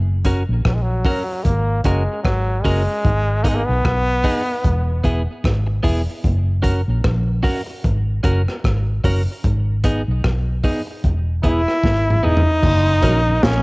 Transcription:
Already playing: F#1
0.25 C#4 F#4 A#4, kick, closed hi-hat
0.49 A#1
0.65 A#1 F#3, kick, cross-stick
0.74 G#3
0.82 F#3
1.05 C#4 F#4 A#4, kick, open hi-hat
1.28 muted clean electric guitar stroke
1.44 G#1 A#3, kick, hi-hat pedal
1.84 F#1 G#3 C#4 F#4 A#4, kick, closed hi-hat
2.23 G#1 F#3, kick, cross-stick
2.62 F#1 G#3 C#4 F#4 A#4, kick, open hi-hat
3.05 G#1, kick, hi-hat pedal
3.43 A#3 B3 D#4 G#4, kick, closed hi-hat
3.48 G#3
3.55 A#3
3.66 B1 B3
3.85 B1, kick, cross-stick
4.24 B3 D#4 G#4, kick, open hi-hat
4.47 muted clean electric guitar stroke
4.64 E1, kick, hi-hat pedal
5.04 E1 B3 E4 G#4, kick, closed hi-hat
5.44 G#1, kick, cross-stick
5.67 muted clean electric guitar stroke
5.83 E1 B3 E4 G#4, kick, open hi-hat
6.24 F#1, kick, hi-hat pedal
6.62 C#4 F#4 A#4, kick, closed hi-hat
6.88 A#1
7.04 A#1, kick, cross-stick
7.43 C#4 F#4 A#4, kick, open hi-hat
7.66 muted clean electric guitar stroke
7.84 G#1, kick, hi-hat pedal
8.23 F#1 C#4 F#4 A#4, kick, closed hi-hat
8.48 cross-stick
8.64 G#1, kick, cross-stick
9.04 F#1 C#4 F#4 A#4, kick, open hi-hat
9.44 G#1, kick, hi-hat pedal
9.84 B3 D#4 G#4, kick, closed hi-hat
10.08 B1
10.24 B1, kick, cross-stick
10.64 B3 D#4 G#4, kick, open hi-hat
10.87 muted clean electric guitar stroke
11.04 E1, kick, hi-hat pedal
11.43 E1 B3 E4 G#4, kick, closed hi-hat
11.68 cross-stick
11.84 G#1, kick, snare
12.10 mid tom
12.23 E1 B3 D#4 E4 G#4
12.37 floor tom
12.63 F#1, kick, crash, low conga
12.86 F#2 C#3
13.01 A#1 F#3 A#3 C#4 F#4 A#4, kick, closed hi-hat, low conga
13.26 F#2 C#3
13.43 A#1 C#4, kick, snare

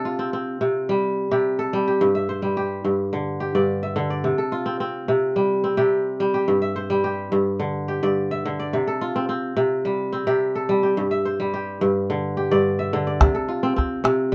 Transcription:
Already playing: C3 G4 A4 D5 E5
0.05 F4
0.19 C4
0.33 C4
0.61 C3
0.89 G3
1.31 C3 G4
1.59 A4
1.73 G3
1.87 G4
2.01 G2
2.15 E5
2.29 C5
2.42 G3
2.57 G4
2.85 G2
3.13 D3
3.40 G4
3.55 G2 D5
3.83 E5
3.96 D3
4.10 D5
4.24 C3
4.38 A4
4.52 F4
4.66 C4
4.80 C4
5.08 C3
5.36 G3
5.64 C4
5.77 C3 G4
6.20 G3
6.34 G4
6.48 G2
6.62 E5
6.76 C5
6.90 G3
7.04 G4
7.32 G2
7.60 D3
7.88 G4
8.03 G2 D5
8.31 E5
8.45 D3
8.60 D5
8.73 C3
8.87 A4
9.01 F4
9.16 C4
9.29 C4
9.57 C3
9.85 G3
10.13 C4
10.27 C3 G4
10.55 A4
10.69 G3
10.83 G4
10.97 G2
11.11 E5
11.25 C5
11.40 G3
11.54 G4
11.81 G2
12.10 D3
12.37 G4
12.51 G2 D5
12.79 E5
12.93 D3
13.07 D5
13.20 C3, calabash thump, calabash click
13.35 A4, calabash click
13.48 F4
13.63 C4
13.76 C4, calabash thump, calabash click
14.04 C3, calabash click

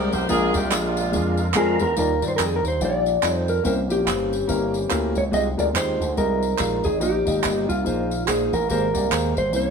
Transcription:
Already playing: G#3 C4 G4 A#4 C5 D5
0.13 B1 C5, tambourine
0.29 A#1 A#2 G#3 D4 F4 G#4 A#4, tambourine
0.54 C2 G4, tambourine
0.71 A#1 G#3 D4 F4 G4, clap, tambourine
0.97 tambourine
1.12 F2 G#3 D4 F4 G#4, tambourine
1.37 F5, tambourine
1.54 F2 G#3 D4 F4 G#4 A#4 G#5 A#5, clap, tambourine
1.79 E2 A#4 A#5, tambourine
1.96 D#2 D#3 F3 G3 D4 D#4 F4 A#4 D5, tambourine
2.21 G2 G3 D#4 F4 D5, tambourine
2.28 C5
2.36 F2 G3 D#4 F4 A#4 D5, clap, tambourine
2.46 G#4
2.56 A#4
2.64 D#2 C5, tambourine
2.80 A#1 G3 D#4 F4 D5, tambourine
2.85 D5
3.06 tambourine
3.22 F2 G3 D#4 F4 D#5, clap, tambourine
3.36 C5
3.48 A#4, tambourine
3.63 C2 C3 E3 A#3 C4 C#4 E4 A#4 C5, tambourine
3.89 A#1 A#3 C#4 E4 G4, tambourine
4.05 G1 A#3 C#4 E4 C5, clap, tambourine
4.33 tambourine
4.47 G1 A#3 C#4 E4 A#4, tambourine
4.74 tambourine
4.89 D2 A#3 C#4 E4 A#4, clap, tambourine
5.15 C#2 C#5, tambourine
5.31 C2 C3 F3 G3 G#3 D#4 F4 G4 D#5, tambourine
5.57 D2 G#3 F4 G4 A#4 D5, tambourine
5.74 D#2 G#3 F4 G4 C5 D#5, clap, tambourine
6.00 D2, tambourine
6.17 C2 G#3 F4 G4 A#4 D#5, tambourine
6.42 tambourine
6.58 A#1 G#3 F4 G4 F5, clap, tambourine
6.84 G#1 G#4, tambourine
7.00 A#1 A#2 D#3 A#3 D#4 G4 D#5, tambourine
7.25 G#1 A#3 D#4 G4 D#5, tambourine
7.43 G1 A#3 D#4 G4 D#5, clap, tambourine
7.69 C2 F4, tambourine
7.84 A#1 A#2 G#3 A#3 D#4 G#4 C5, tambourine
8.11 tambourine
8.26 A#1 A#3 D#4 G#4 C5, clap, tambourine
8.53 A1 A#4, tambourine
8.69 G#1 G#2 A#3 G4 G#4 A#4 C5, tambourine
8.93 C2 A#3 G4 G#4 D5, tambourine
9.10 D#2 A#3 G4 G#4 C5, clap, tambourine
9.37 G1 C5, tambourine
9.53 C2 C3 A#3 C#4 E4 C5 C#5, tambourine

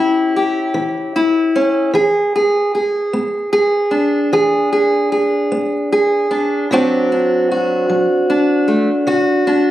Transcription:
Already playing: A2 C#4 E4 G4
0.36 G4
0.74 E3
1.16 E4
1.56 C#4
1.94 E3 G#4
2.36 G#4
2.75 G#4
3.13 B3
3.53 G#4
3.91 D4
4.33 E3 G#4
4.73 G#4
5.12 G#4
5.52 B3
5.92 G#4
6.31 D4
6.71 D3 F#3 C4 D4 F#4
7.12 D4
7.51 F#4
7.90 F#3
8.30 D4
8.68 A3
9.07 D3 F#4
9.47 D4

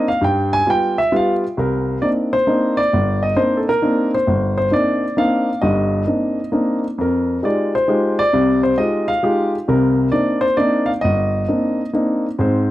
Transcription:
0.08 F5
0.21 G2 G5
0.53 G#5
0.66 G3 B3 F4 G5
0.98 E5
1.12 G3 B3 F4
1.16 F5
1.57 C2 A#4
2.02 A#3 C4 D4 D#4 D5
2.33 C5
2.47 A#3 C4 D4 D#4
2.77 D5
2.93 G1
3.23 D#5
3.36 A#3 C4 D4 D#4 C5
3.57 A4
3.69 A#4
3.82 A#3 C4 D4 D#4
4.15 C5
4.27 G1
4.58 C5
4.71 A#3 C4 D4 D#4 D5
5.17 A#3 C4 D4 D#4 F5
5.62 G1 G2 D#5
6.07 A#3 C4 D4 D#4
6.52 A#3 C4 D4 D#4
6.98 F2 A#4
7.43 G#3 D#4 F4 G4 D5
7.75 C5
7.88 G#3 D#4 F4 G4
8.19 D5
8.33 C2 C3
8.63 C5
8.78 G#3 D#4 F4 G4 D#5
9.08 F5
9.23 G#3 D#4 F4 G4
9.68 C2 C3 A#4
10.12 A#3 C4 D4 D#4 D5
10.41 C5
10.57 A#3 C4 D4 D#4 D5
10.86 F5
11.01 G1 D#5
11.48 A#3 C4 D4 D#4
11.93 A#3 C4 D4 D#4
12.39 G#2 C4 C5

